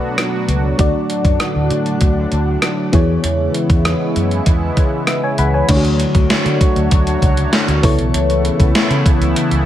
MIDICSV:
0, 0, Header, 1, 5, 480
1, 0, Start_track
1, 0, Tempo, 612245
1, 620, Time_signature, 4, 2, 24, 8
1, 7570, End_track
2, 0, Start_track
2, 0, Title_t, "FM electric piano"
2, 0, Program_c, 0, 5
2, 0, Control_c, 0, 64, 127
2, 0, Note_on_c, 0, 47, 66
2, 0, Note_on_c, 0, 59, 65
2, 0, Note_on_c, 0, 66, 61
2, 0, Note_on_c, 0, 69, 63
2, 0, Note_on_c, 0, 74, 73
2, 582, Note_off_c, 0, 59, 0
2, 585, Note_off_c, 0, 66, 0
2, 589, Note_off_c, 0, 69, 0
2, 592, Note_off_c, 0, 74, 0
2, 612, Note_on_c, 0, 57, 71
2, 617, Note_on_c, 0, 62, 60
2, 621, Note_on_c, 0, 50, 66
2, 623, Note_on_c, 0, 66, 63
2, 628, Control_c, 0, 64, 0
2, 631, Note_on_c, 0, 74, 78
2, 634, Note_off_c, 0, 47, 0
2, 776, Control_c, 0, 64, 127
2, 1309, Note_off_c, 0, 50, 0
2, 2264, Note_off_c, 0, 57, 0
2, 2267, Note_off_c, 0, 62, 0
2, 2270, Note_off_c, 0, 66, 0
2, 2274, Note_off_c, 0, 74, 0
2, 2290, Note_on_c, 0, 59, 65
2, 2296, Note_on_c, 0, 64, 60
2, 2300, Note_on_c, 0, 52, 66
2, 2302, Note_on_c, 0, 68, 64
2, 2309, Control_c, 0, 64, 0
2, 2311, Note_on_c, 0, 73, 74
2, 2428, Control_c, 0, 64, 127
2, 2989, Note_off_c, 0, 52, 0
2, 3954, Note_off_c, 0, 73, 0
2, 3983, Note_on_c, 0, 76, 61
2, 3989, Note_on_c, 0, 71, 50
2, 4096, Note_off_c, 0, 76, 0
2, 4098, Note_off_c, 0, 71, 0
2, 4105, Note_on_c, 0, 80, 63
2, 4109, Note_on_c, 0, 73, 55
2, 4184, Note_off_c, 0, 59, 0
2, 4187, Note_off_c, 0, 64, 0
2, 4189, Note_off_c, 0, 68, 0
2, 4217, Note_off_c, 0, 80, 0
2, 4219, Note_off_c, 0, 73, 0
2, 4223, Note_on_c, 0, 83, 65
2, 4226, Note_on_c, 0, 78, 54
2, 4336, Note_off_c, 0, 83, 0
2, 4337, Note_off_c, 0, 78, 0
2, 4344, Note_on_c, 0, 80, 62
2, 4349, Note_on_c, 0, 73, 53
2, 4458, Note_on_c, 0, 57, 70
2, 4464, Note_on_c, 0, 62, 68
2, 4467, Note_off_c, 0, 73, 0
2, 4467, Note_on_c, 0, 50, 73
2, 4471, Control_c, 0, 64, 0
2, 4471, Note_on_c, 0, 64, 55
2, 4476, Note_on_c, 0, 73, 83
2, 4516, Note_off_c, 0, 64, 0
2, 4521, Note_on_c, 0, 66, 69
2, 4570, Note_off_c, 0, 80, 0
2, 4618, Control_c, 0, 64, 127
2, 5152, Note_off_c, 0, 50, 0
2, 6108, Note_off_c, 0, 57, 0
2, 6110, Note_off_c, 0, 62, 0
2, 6117, Note_off_c, 0, 73, 0
2, 6136, Note_on_c, 0, 59, 68
2, 6139, Note_off_c, 0, 66, 0
2, 6142, Note_on_c, 0, 64, 62
2, 6144, Note_on_c, 0, 49, 68
2, 6147, Note_on_c, 0, 69, 64
2, 6149, Control_c, 0, 64, 0
2, 6155, Note_on_c, 0, 73, 78
2, 6307, Control_c, 0, 64, 127
2, 6831, Note_off_c, 0, 49, 0
2, 7570, Note_off_c, 0, 59, 0
2, 7570, Note_off_c, 0, 64, 0
2, 7570, Note_off_c, 0, 69, 0
2, 7570, Note_off_c, 0, 73, 0
2, 7570, End_track
3, 0, Start_track
3, 0, Title_t, "Analog synth pad"
3, 0, Program_c, 1, 89
3, 0, Note_on_c, 1, 54, 68
3, 0, Note_on_c, 1, 57, 67
3, 0, Note_on_c, 1, 59, 70
3, 0, Note_on_c, 1, 62, 75
3, 0, Note_on_c, 1, 66, 85
3, 589, Note_off_c, 1, 57, 0
3, 601, Note_off_c, 1, 62, 0
3, 603, Note_off_c, 1, 59, 0
3, 621, Note_on_c, 1, 45, 73
3, 621, Note_on_c, 1, 50, 69
3, 623, Note_on_c, 1, 62, 70
3, 2271, Note_off_c, 1, 54, 0
3, 2271, Note_off_c, 1, 66, 0
3, 2284, Note_off_c, 1, 45, 0
3, 2284, Note_off_c, 1, 50, 0
3, 2284, Note_off_c, 1, 62, 0
3, 2299, Note_on_c, 1, 64, 79
3, 2301, Note_on_c, 1, 59, 67
3, 2302, Note_on_c, 1, 52, 70
3, 2303, Note_on_c, 1, 49, 71
3, 2304, Note_on_c, 1, 56, 69
3, 4438, Note_off_c, 1, 64, 0
3, 4439, Note_off_c, 1, 52, 0
3, 4439, Note_off_c, 1, 59, 0
3, 4440, Note_off_c, 1, 49, 0
3, 4440, Note_off_c, 1, 56, 0
3, 4461, Note_on_c, 1, 66, 88
3, 4462, Note_on_c, 1, 54, 74
3, 4463, Note_on_c, 1, 57, 68
3, 4463, Note_on_c, 1, 62, 74
3, 4463, Note_on_c, 1, 73, 74
3, 6124, Note_off_c, 1, 54, 0
3, 6124, Note_off_c, 1, 57, 0
3, 6124, Note_off_c, 1, 62, 0
3, 6124, Note_off_c, 1, 66, 0
3, 6124, Note_off_c, 1, 73, 0
3, 6137, Note_on_c, 1, 52, 70
3, 6139, Note_on_c, 1, 59, 71
3, 6140, Note_on_c, 1, 64, 89
3, 6141, Note_on_c, 1, 49, 80
3, 6141, Note_on_c, 1, 57, 69
3, 7570, Note_off_c, 1, 49, 0
3, 7570, Note_off_c, 1, 52, 0
3, 7570, Note_off_c, 1, 57, 0
3, 7570, Note_off_c, 1, 59, 0
3, 7570, Note_off_c, 1, 64, 0
3, 7570, End_track
4, 0, Start_track
4, 0, Title_t, "Fingered electric bass"
4, 0, Program_c, 2, 33
4, 378, Note_on_c, 2, 37, 82
4, 559, Note_off_c, 2, 37, 0
4, 620, Note_on_c, 2, 38, 89
4, 710, Note_off_c, 2, 38, 0
4, 977, Note_on_c, 2, 42, 81
4, 1068, Note_off_c, 2, 42, 0
4, 1219, Note_on_c, 2, 38, 79
4, 1309, Note_off_c, 2, 38, 0
4, 1338, Note_on_c, 2, 50, 89
4, 1519, Note_off_c, 2, 50, 0
4, 1578, Note_on_c, 2, 38, 83
4, 1759, Note_off_c, 2, 38, 0
4, 1821, Note_on_c, 2, 38, 88
4, 2000, Note_off_c, 2, 38, 0
4, 2299, Note_on_c, 2, 40, 93
4, 2480, Note_off_c, 2, 40, 0
4, 2540, Note_on_c, 2, 40, 93
4, 2720, Note_off_c, 2, 40, 0
4, 2898, Note_on_c, 2, 40, 90
4, 3079, Note_off_c, 2, 40, 0
4, 3262, Note_on_c, 2, 42, 79
4, 3441, Note_off_c, 2, 42, 0
4, 3500, Note_on_c, 2, 40, 85
4, 3680, Note_off_c, 2, 40, 0
4, 4222, Note_on_c, 2, 37, 86
4, 4401, Note_off_c, 2, 37, 0
4, 4461, Note_on_c, 2, 38, 98
4, 4731, Note_off_c, 2, 38, 0
4, 4821, Note_on_c, 2, 38, 88
4, 4910, Note_off_c, 2, 38, 0
4, 5060, Note_on_c, 2, 50, 86
4, 5150, Note_off_c, 2, 50, 0
4, 5301, Note_on_c, 2, 38, 84
4, 5390, Note_off_c, 2, 38, 0
4, 5423, Note_on_c, 2, 38, 89
4, 5602, Note_off_c, 2, 38, 0
4, 5662, Note_on_c, 2, 37, 76
4, 5841, Note_off_c, 2, 37, 0
4, 6022, Note_on_c, 2, 38, 91
4, 6111, Note_off_c, 2, 38, 0
4, 6261, Note_on_c, 2, 35, 85
4, 6351, Note_off_c, 2, 35, 0
4, 6381, Note_on_c, 2, 37, 105
4, 6651, Note_off_c, 2, 37, 0
4, 6740, Note_on_c, 2, 37, 87
4, 6830, Note_off_c, 2, 37, 0
4, 6980, Note_on_c, 2, 49, 92
4, 7070, Note_off_c, 2, 49, 0
4, 7217, Note_on_c, 2, 37, 84
4, 7308, Note_off_c, 2, 37, 0
4, 7459, Note_on_c, 2, 37, 80
4, 7550, Note_off_c, 2, 37, 0
4, 7570, End_track
5, 0, Start_track
5, 0, Title_t, "Drums"
5, 141, Note_on_c, 9, 37, 92
5, 143, Note_on_c, 9, 42, 70
5, 219, Note_off_c, 9, 37, 0
5, 222, Note_off_c, 9, 42, 0
5, 380, Note_on_c, 9, 42, 66
5, 459, Note_off_c, 9, 42, 0
5, 618, Note_on_c, 9, 42, 83
5, 620, Note_on_c, 9, 36, 105
5, 697, Note_off_c, 9, 42, 0
5, 698, Note_off_c, 9, 36, 0
5, 860, Note_on_c, 9, 42, 66
5, 938, Note_off_c, 9, 42, 0
5, 977, Note_on_c, 9, 36, 87
5, 980, Note_on_c, 9, 42, 47
5, 1056, Note_off_c, 9, 36, 0
5, 1058, Note_off_c, 9, 42, 0
5, 1096, Note_on_c, 9, 42, 75
5, 1098, Note_on_c, 9, 37, 97
5, 1175, Note_off_c, 9, 42, 0
5, 1176, Note_off_c, 9, 37, 0
5, 1337, Note_on_c, 9, 42, 62
5, 1415, Note_off_c, 9, 42, 0
5, 1457, Note_on_c, 9, 42, 43
5, 1536, Note_off_c, 9, 42, 0
5, 1573, Note_on_c, 9, 42, 77
5, 1578, Note_on_c, 9, 36, 73
5, 1651, Note_off_c, 9, 42, 0
5, 1657, Note_off_c, 9, 36, 0
5, 1816, Note_on_c, 9, 42, 52
5, 1894, Note_off_c, 9, 42, 0
5, 2055, Note_on_c, 9, 37, 89
5, 2057, Note_on_c, 9, 42, 70
5, 2133, Note_off_c, 9, 37, 0
5, 2136, Note_off_c, 9, 42, 0
5, 2297, Note_on_c, 9, 42, 67
5, 2298, Note_on_c, 9, 36, 97
5, 2375, Note_off_c, 9, 42, 0
5, 2376, Note_off_c, 9, 36, 0
5, 2538, Note_on_c, 9, 42, 86
5, 2617, Note_off_c, 9, 42, 0
5, 2779, Note_on_c, 9, 42, 67
5, 2857, Note_off_c, 9, 42, 0
5, 2898, Note_on_c, 9, 36, 87
5, 2901, Note_on_c, 9, 42, 47
5, 2977, Note_off_c, 9, 36, 0
5, 2979, Note_off_c, 9, 42, 0
5, 3019, Note_on_c, 9, 42, 76
5, 3020, Note_on_c, 9, 37, 98
5, 3097, Note_off_c, 9, 42, 0
5, 3099, Note_off_c, 9, 37, 0
5, 3261, Note_on_c, 9, 42, 67
5, 3340, Note_off_c, 9, 42, 0
5, 3382, Note_on_c, 9, 42, 43
5, 3460, Note_off_c, 9, 42, 0
5, 3498, Note_on_c, 9, 42, 82
5, 3501, Note_on_c, 9, 36, 73
5, 3576, Note_off_c, 9, 42, 0
5, 3579, Note_off_c, 9, 36, 0
5, 3739, Note_on_c, 9, 36, 72
5, 3739, Note_on_c, 9, 42, 53
5, 3818, Note_off_c, 9, 36, 0
5, 3818, Note_off_c, 9, 42, 0
5, 3976, Note_on_c, 9, 37, 90
5, 3979, Note_on_c, 9, 42, 69
5, 4054, Note_off_c, 9, 37, 0
5, 4057, Note_off_c, 9, 42, 0
5, 4218, Note_on_c, 9, 42, 69
5, 4297, Note_off_c, 9, 42, 0
5, 4458, Note_on_c, 9, 42, 92
5, 4458, Note_on_c, 9, 49, 93
5, 4461, Note_on_c, 9, 36, 106
5, 4536, Note_off_c, 9, 42, 0
5, 4536, Note_off_c, 9, 49, 0
5, 4539, Note_off_c, 9, 36, 0
5, 4583, Note_on_c, 9, 42, 50
5, 4661, Note_off_c, 9, 42, 0
5, 4701, Note_on_c, 9, 42, 74
5, 4779, Note_off_c, 9, 42, 0
5, 4819, Note_on_c, 9, 36, 92
5, 4820, Note_on_c, 9, 42, 47
5, 4898, Note_off_c, 9, 36, 0
5, 4899, Note_off_c, 9, 42, 0
5, 4939, Note_on_c, 9, 42, 76
5, 4941, Note_on_c, 9, 38, 111
5, 5018, Note_off_c, 9, 42, 0
5, 5019, Note_off_c, 9, 38, 0
5, 5063, Note_on_c, 9, 42, 52
5, 5141, Note_off_c, 9, 42, 0
5, 5180, Note_on_c, 9, 36, 89
5, 5182, Note_on_c, 9, 42, 69
5, 5259, Note_off_c, 9, 36, 0
5, 5261, Note_off_c, 9, 42, 0
5, 5302, Note_on_c, 9, 42, 45
5, 5380, Note_off_c, 9, 42, 0
5, 5420, Note_on_c, 9, 42, 88
5, 5423, Note_on_c, 9, 36, 76
5, 5498, Note_off_c, 9, 42, 0
5, 5501, Note_off_c, 9, 36, 0
5, 5542, Note_on_c, 9, 42, 53
5, 5621, Note_off_c, 9, 42, 0
5, 5662, Note_on_c, 9, 36, 81
5, 5665, Note_on_c, 9, 42, 58
5, 5740, Note_off_c, 9, 36, 0
5, 5743, Note_off_c, 9, 42, 0
5, 5781, Note_on_c, 9, 42, 56
5, 5859, Note_off_c, 9, 42, 0
5, 5902, Note_on_c, 9, 38, 103
5, 5904, Note_on_c, 9, 42, 70
5, 5980, Note_off_c, 9, 38, 0
5, 5983, Note_off_c, 9, 42, 0
5, 6024, Note_on_c, 9, 42, 55
5, 6103, Note_off_c, 9, 42, 0
5, 6142, Note_on_c, 9, 36, 110
5, 6142, Note_on_c, 9, 46, 72
5, 6220, Note_off_c, 9, 36, 0
5, 6220, Note_off_c, 9, 46, 0
5, 6261, Note_on_c, 9, 42, 49
5, 6339, Note_off_c, 9, 42, 0
5, 6384, Note_on_c, 9, 42, 98
5, 6462, Note_off_c, 9, 42, 0
5, 6506, Note_on_c, 9, 42, 49
5, 6584, Note_off_c, 9, 42, 0
5, 6624, Note_on_c, 9, 42, 69
5, 6702, Note_off_c, 9, 42, 0
5, 6740, Note_on_c, 9, 36, 98
5, 6743, Note_on_c, 9, 42, 52
5, 6818, Note_off_c, 9, 36, 0
5, 6821, Note_off_c, 9, 42, 0
5, 6860, Note_on_c, 9, 42, 78
5, 6862, Note_on_c, 9, 38, 112
5, 6939, Note_off_c, 9, 42, 0
5, 6940, Note_off_c, 9, 38, 0
5, 6983, Note_on_c, 9, 42, 53
5, 7061, Note_off_c, 9, 42, 0
5, 7101, Note_on_c, 9, 36, 92
5, 7104, Note_on_c, 9, 42, 70
5, 7179, Note_off_c, 9, 36, 0
5, 7183, Note_off_c, 9, 42, 0
5, 7225, Note_on_c, 9, 42, 48
5, 7303, Note_off_c, 9, 42, 0
5, 7341, Note_on_c, 9, 42, 87
5, 7420, Note_off_c, 9, 42, 0
5, 7459, Note_on_c, 9, 42, 55
5, 7537, Note_off_c, 9, 42, 0
5, 7570, End_track
0, 0, End_of_file